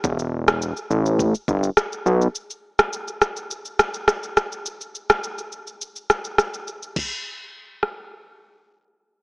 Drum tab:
CC |----------------|----------------|----------------|x---------------|
SH |xx-xxxxxxxxxxxxx|xx-xxxxxxxxxxxxx|xxxxxxxxxxxxxxxx|----------------|
SD |---r--------r---|---r--r---r-r-r-|---r------r-r---|------r---------|
BD |o-------o-o-----|----------------|----------------|o---------------|